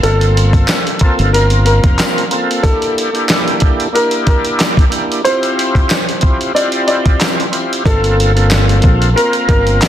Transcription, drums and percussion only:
0.03 closed hi-hat medium
0.21 closed hi-hat medium
0.37 closed hi-hat medium
0.53 kick medium
0.53 closed hi-hat medium
0.68 snare loud
0.68 clap loud
0.68 closed hi-hat medium
0.68 tambourine medium
0.87 closed hi-hat medium
0.99 kick medium
0.99 closed hi-hat medium
1.19 closed hi-hat medium
1.34 closed hi-hat medium
1.50 closed hi-hat medium
1.66 closed hi-hat medium
1.84 kick medium
1.84 closed hi-hat medium
1.99 snare loud
1.99 clap medium
1.99 closed hi-hat loud
1.99 tambourine medium
2.18 closed hi-hat medium
2.31 closed hi-hat medium
2.51 closed hi-hat medium
2.64 kick loud
2.64 closed hi-hat medium
2.82 closed hi-hat medium
2.98 closed hi-hat medium
3.15 closed hi-hat medium
3.29 snare loud
3.29 clap loud
3.29 closed hi-hat medium
3.29 tambourine medium
3.48 closed hi-hat medium
3.60 kick medium
3.60 closed hi-hat medium
3.80 closed hi-hat medium
3.95 closed hi-hat medium
4.11 closed hi-hat medium
4.27 kick loud
4.27 closed hi-hat medium
4.45 closed hi-hat medium
4.60 snare loud
4.60 clap medium
4.60 closed hi-hat loud
4.60 tambourine medium
4.77 kick medium
4.77 closed hi-hat medium
4.92 closed hi-hat medium
5.12 closed hi-hat medium
5.25 closed hi-hat medium
5.43 closed hi-hat medium
5.59 closed hi-hat medium
5.75 kick medium
5.75 closed hi-hat medium
5.90 snare loud
5.90 clap loud
5.90 closed hi-hat medium
5.90 tambourine medium
6.09 closed hi-hat medium
6.21 kick medium
6.21 closed hi-hat medium
6.41 closed hi-hat medium
6.56 closed hi-hat medium
6.72 closed hi-hat medium
6.88 closed hi-hat medium
7.06 kick loud
7.06 closed hi-hat medium
7.21 snare loud
7.21 clap medium
7.21 closed hi-hat loud
7.21 tambourine medium
7.40 closed hi-hat medium
7.53 closed hi-hat medium
7.73 closed hi-hat medium
7.86 kick loud
7.86 closed hi-hat medium
8.04 closed hi-hat medium
8.20 closed hi-hat medium
8.37 closed hi-hat medium
8.51 snare loud
8.51 clap loud
8.51 closed hi-hat medium
8.51 tambourine medium
8.69 closed hi-hat medium
8.82 kick medium
8.82 closed hi-hat medium
9.02 closed hi-hat medium
9.18 closed hi-hat medium
9.33 closed hi-hat medium
9.49 kick medium
9.49 closed hi-hat medium
9.67 closed hi-hat medium
9.82 snare loud
9.82 clap medium
9.82 closed hi-hat loud
9.82 tambourine medium

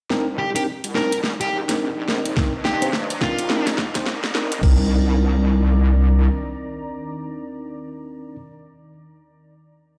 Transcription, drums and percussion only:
0.10 snare soft
0.56 closed hi-hat medium
0.84 closed hi-hat medium
0.95 snare medium
1.12 closed hi-hat medium
1.24 snare medium
1.41 closed hi-hat medium
1.69 snare medium
1.69 closed hi-hat medium
2.08 snare medium
2.25 closed hi-hat medium
2.37 kick loud
2.37 snare medium
2.65 snare medium
2.82 closed hi-hat medium
2.93 snare medium
3.10 closed hi-hat medium
3.21 kick loud
3.21 snare medium
3.39 closed hi-hat medium
3.50 snare medium
3.67 snare medium
3.67 closed hi-hat medium
3.78 kick medium
3.78 snare loud
3.95 kick loud
3.95 snare medium
3.95 closed hi-hat medium
4.06 snare loud
4.24 snare medium
4.35 snare loud
4.52 closed hi-hat medium
4.63 kick loud
4.63 crash medium

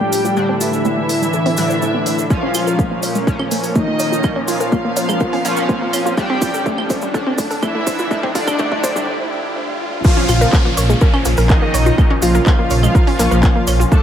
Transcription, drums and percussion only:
0.13 open hi-hat loud
0.13 cabasa loud
0.25 cabasa medium
0.37 cabasa soft
0.61 open hi-hat loud
0.61 cabasa medium
0.73 cabasa soft
0.85 cabasa soft
1.09 open hi-hat loud
1.09 cabasa medium
1.23 cabasa medium
1.33 cabasa soft
1.46 open hi-hat medium
1.57 open hi-hat loud
1.57 cabasa medium
1.70 cabasa soft
1.82 cabasa soft
2.06 open hi-hat loud
2.06 cabasa loud
2.18 cabasa medium
2.30 kick loud
2.30 cabasa soft
2.54 open hi-hat loud
2.54 cabasa medium
2.54 claves medium
2.67 cabasa medium
2.79 kick loud
2.79 cabasa soft
3.03 open hi-hat loud
3.03 cabasa medium
3.15 cabasa soft
3.27 kick loud
3.27 cabasa soft
3.39 claves medium
3.51 open hi-hat loud
3.51 cabasa medium
3.64 open hi-hat medium
3.64 cabasa medium
3.75 kick loud
3.75 cabasa soft
3.99 open hi-hat loud
3.99 cabasa medium
4.13 cabasa medium
4.23 kick loud
4.23 cabasa soft
4.23 claves medium
4.48 open hi-hat loud
4.48 cabasa medium
4.60 cabasa medium
4.72 kick loud
4.72 cabasa soft
4.96 open hi-hat loud
4.96 cabasa medium
5.09 cabasa medium
5.09 claves medium
5.20 kick loud
5.20 cabasa soft
5.33 open hi-hat medium
5.45 open hi-hat loud
5.45 cabasa medium
5.57 cabasa soft
5.69 kick loud
5.69 cabasa soft
5.93 open hi-hat loud
5.93 cabasa medium
5.93 claves medium
6.06 cabasa medium
6.17 kick loud
6.17 cabasa soft
6.42 kick loud
6.42 open hi-hat loud
6.42 cabasa medium
6.54 cabasa medium
6.66 kick loud
6.66 cabasa soft
6.78 claves medium
6.90 kick loud
6.90 open hi-hat loud
6.90 cabasa medium
7.02 cabasa soft
7.14 kick loud
7.14 cabasa soft
7.38 kick loud
7.38 open hi-hat loud
7.38 cabasa medium
7.51 open hi-hat medium
7.51 cabasa soft
7.63 kick loud
7.63 cabasa soft
7.63 claves medium
7.87 kick loud
7.87 open hi-hat loud
7.87 cabasa medium
7.99 cabasa soft
8.11 kick loud
8.11 cabasa soft
8.23 kick medium
8.35 kick loud
8.35 open hi-hat loud
8.35 cabasa loud
8.47 kick medium
8.47 cabasa medium
8.47 claves medium
8.59 kick loud
8.59 cabasa soft
8.72 kick medium
8.84 kick loud
8.84 open hi-hat loud
8.84 cabasa medium
8.96 kick medium
8.96 cabasa medium
10.04 kick loud
10.04 crash loud
10.04 cabasa soft
10.29 open hi-hat loud
10.29 cabasa medium
10.29 claves medium
10.41 cabasa soft
10.53 kick loud
10.53 clap loud
10.53 cabasa soft
10.77 open hi-hat loud
10.77 cabasa loud
10.90 cabasa soft
11.01 kick loud
11.01 cabasa soft
11.14 claves medium
11.25 open hi-hat loud
11.25 cabasa medium
11.37 open hi-hat medium
11.37 cabasa medium
11.49 kick loud
11.49 clap loud
11.49 cabasa soft
11.74 open hi-hat loud
11.74 cabasa medium
11.86 cabasa medium
11.98 kick loud
11.98 cabasa soft
11.98 claves soft
12.22 open hi-hat loud
12.22 cabasa medium
12.35 cabasa medium
12.46 kick loud
12.46 clap loud
12.46 cabasa soft
12.70 open hi-hat loud
12.70 cabasa medium
12.83 cabasa medium
12.83 claves soft
12.95 kick loud
12.95 cabasa soft
13.07 open hi-hat medium
13.19 clap soft
13.19 open hi-hat loud
13.19 cabasa loud
13.32 cabasa soft
13.43 kick loud
13.43 clap loud
13.43 cabasa soft
13.67 open hi-hat loud
13.67 cabasa loud
13.67 claves medium
13.81 cabasa medium
13.92 kick loud
13.92 cabasa soft

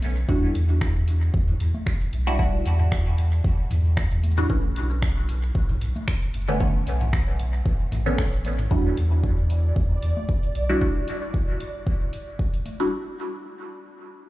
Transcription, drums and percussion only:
0.02 open hi-hat medium
0.02 high conga medium
0.02 shaker soft
0.10 shaker soft
0.17 shaker soft
0.29 kick loud
0.29 shaker soft
0.55 open hi-hat medium
0.55 shaker soft
0.69 shaker soft
0.81 finger snap medium
0.81 kick loud
0.81 shaker soft
1.08 open hi-hat medium
1.08 shaker soft
1.22 shaker soft
1.34 kick loud
1.34 shaker soft
1.48 mid tom medium
1.60 open hi-hat medium
1.60 shaker soft
1.74 high conga medium
1.74 shaker soft
1.86 finger snap medium
1.86 kick loud
2.01 open hi-hat soft
2.13 open hi-hat medium
2.13 shaker soft
2.20 shaker soft
2.27 shaker soft
2.39 kick loud
2.39 shaker soft
2.66 open hi-hat medium
2.66 shaker soft
2.80 mid tom medium
2.80 shaker soft
2.92 finger snap medium
2.92 kick loud
2.92 shaker soft
3.18 open hi-hat medium
3.18 shaker soft
3.33 shaker soft
3.44 kick loud
3.44 shaker soft
3.71 mid tom medium
3.71 open hi-hat medium
3.71 shaker soft
3.85 shaker soft
3.97 finger snap medium
3.97 kick loud
4.11 open hi-hat soft
4.23 open hi-hat medium
4.23 high conga medium
4.23 shaker soft
4.31 shaker soft
4.38 mid tom medium
4.38 shaker soft
4.50 kick loud
4.50 shaker soft
4.76 open hi-hat medium
4.76 shaker soft
4.90 shaker soft
5.02 finger snap medium
5.02 kick loud
5.02 shaker soft
5.29 open hi-hat medium
5.29 shaker soft
5.43 shaker soft
5.55 kick loud
5.55 shaker soft
5.69 mid tom medium
5.81 open hi-hat medium
5.81 shaker soft
5.96 high conga medium
5.96 shaker soft
6.08 finger snap medium
6.08 kick loud
6.22 open hi-hat soft
6.34 open hi-hat medium
6.34 shaker soft
6.41 shaker soft
6.48 shaker soft
6.60 kick loud
6.60 shaker soft
6.87 open hi-hat medium
6.87 shaker soft
7.01 mid tom medium
7.01 shaker soft
7.13 finger snap medium
7.13 kick loud
7.13 shaker medium
7.39 open hi-hat medium
7.39 shaker soft
7.54 shaker soft
7.66 kick loud
7.66 shaker soft
7.92 mid tom medium
7.92 open hi-hat medium
7.92 high conga medium
7.92 shaker soft
8.06 shaker soft
8.18 finger snap medium
8.18 kick loud
8.33 open hi-hat soft
8.45 open hi-hat medium
8.45 high conga medium
8.45 shaker soft
8.52 shaker soft
8.59 mid tom medium
8.59 shaker soft
8.71 kick loud
8.97 open hi-hat medium
9.24 kick loud
9.50 open hi-hat medium
9.76 kick loud
10.02 open hi-hat medium
10.17 high conga medium
10.29 kick loud
10.43 open hi-hat soft
10.55 open hi-hat medium
10.81 kick loud
11.08 open hi-hat medium
11.34 kick loud
11.60 open hi-hat medium
11.87 kick loud
12.13 open hi-hat medium
12.39 kick loud
12.54 open hi-hat soft
12.66 open hi-hat medium
12.66 high conga medium

